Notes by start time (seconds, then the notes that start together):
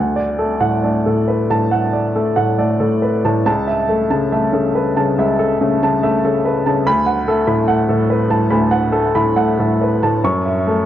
Already playing: D2 F#5
0.16 D5
0.39 A3 A4
0.60 A2 F#5
0.83 A3 D5
1.06 A2 A4
1.28 B4
1.50 A2 A5
1.71 A3 F#5
1.93 D5
2.16 A3 A4
2.36 A2 F#5
2.58 A3 D5
2.80 A2 A4
3.02 B4
3.25 A2 A5
3.46 C#2 A5
3.67 E5
3.89 A3 A4
4.10 C#3 A5
4.32 A3 E5
4.53 C#3 A4
4.75 B4
4.97 C#3 A5
5.18 C#2 E5
5.39 A4
5.61 C#3 A3
5.82 C#3 A5
6.03 A3 E5
6.24 C#3 A4
6.45 B4
6.66 C#3 A5
6.86 D2 B5
7.06 F#5
7.28 A3 A4
7.47 A2 B5
7.68 A3 F#5
7.89 A2 A4
8.10 B4
8.30 A2 A5
8.51 D2 B5
8.71 F#5
8.92 A3 A4
9.15 A2 B5
9.37 A3 F#5
9.59 A2 A4
9.82 B4
10.03 A2 A5
10.24 F#2 C#6
10.46 E5
10.67 A3 A4